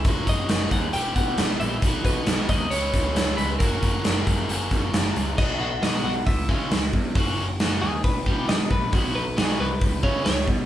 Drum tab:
CC |--------|--------|--------|x-------|
HH |xxxxxxxx|xxxxxxxx|xxxxxxxx|--o-o-o-|
SD |--o---o-|--o--oo-|--o--oo-|--o---o-|
BD |oo-o-o--|oo-o-o--|oo-o-o--|o---oo-o|

CC |--------|--------|
HH |o-o-o-o-|o-o-o-o-|
SD |--o---o-|--o---o-|
BD |o---oo-o|o---oo-o|